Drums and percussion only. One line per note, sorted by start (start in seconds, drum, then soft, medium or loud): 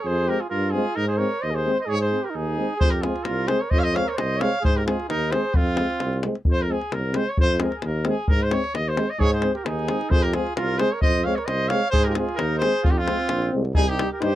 2.81 davul low loud
2.93 davul high soft
3.03 davul high medium
3.16 davul high soft
3.25 davul high medium
3.48 davul high medium
3.71 davul low medium
3.86 davul high soft
3.96 davul high medium
4.08 davul high soft
4.18 davul high medium
4.41 davul high medium
4.65 davul low loud
4.78 davul high soft
4.88 davul high medium
5.00 davul high soft
5.10 davul high medium
5.32 davul high medium
5.54 davul low loud
5.67 davul high soft
5.77 davul high medium
5.90 davul high soft
6.00 davul high medium
6.13 davul high soft
6.23 davul high medium
6.35 davul high soft
6.45 davul low medium
6.59 davul high soft
6.81 davul high soft
6.92 davul high medium
7.14 davul high medium
7.37 davul low loud
7.49 davul high soft
7.60 davul high medium
7.72 davul high soft
7.82 davul high medium
8.05 davul high medium
8.28 davul low loud
8.41 davul high soft
8.51 davul high medium
8.64 davul high soft
8.75 davul high medium
8.97 davul high medium
9.20 davul low medium
9.33 davul high soft
9.42 davul high medium
9.55 davul high soft
9.66 davul high medium
9.79 davul high soft
9.88 davul high medium
10.01 davul high soft
10.11 davul low loud
10.25 davul high soft
10.33 davul high medium
10.47 davul high soft
10.57 davul high medium
10.79 davul high medium
11.02 davul low medium
11.15 davul high soft
11.38 davul high soft
11.48 davul high medium
11.70 davul high medium
11.93 davul low medium
12.06 davul high soft
12.15 davul high medium
12.29 davul high soft
12.39 davul high medium
12.62 davul high medium
12.84 davul low loud
13.08 davul high medium
13.20 davul high soft
13.29 davul high medium
13.42 davul high soft
13.65 davul high soft
13.75 davul low loud
13.99 davul high medium
14.22 davul high medium